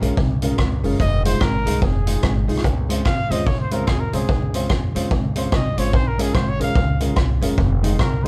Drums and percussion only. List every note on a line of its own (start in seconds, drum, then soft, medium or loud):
0.02 closed hi-hat medium
0.17 kick loud
0.42 closed hi-hat medium
0.58 kick loud
0.58 cross-stick loud
0.84 open hi-hat soft
1.00 kick loud
1.00 hi-hat pedal medium
1.25 closed hi-hat loud
1.41 kick loud
1.41 cross-stick loud
1.67 closed hi-hat medium
1.82 kick loud
2.07 closed hi-hat medium
2.23 kick loud
2.23 cross-stick loud
2.49 open hi-hat medium
2.57 cross-stick medium
2.64 kick loud
2.64 hi-hat pedal medium
2.90 closed hi-hat loud
3.05 kick loud
3.05 cross-stick loud
3.31 closed hi-hat medium
3.47 kick loud
3.71 closed hi-hat medium
3.87 kick loud
3.87 cross-stick loud
4.13 closed hi-hat medium
4.29 kick loud
4.54 closed hi-hat medium
4.70 kick loud
4.70 cross-stick loud
4.96 closed hi-hat medium
5.11 kick loud
5.36 closed hi-hat medium
5.52 kick loud
5.52 cross-stick loud
5.78 closed hi-hat medium
5.93 kick loud
6.19 closed hi-hat loud
6.35 kick loud
6.35 cross-stick loud
6.61 closed hi-hat medium
6.76 kick loud
7.00 closed hi-hat medium
7.16 kick loud
7.16 cross-stick loud
7.42 closed hi-hat medium
7.58 kick loud
7.84 closed hi-hat medium
7.99 kick loud
7.99 cross-stick loud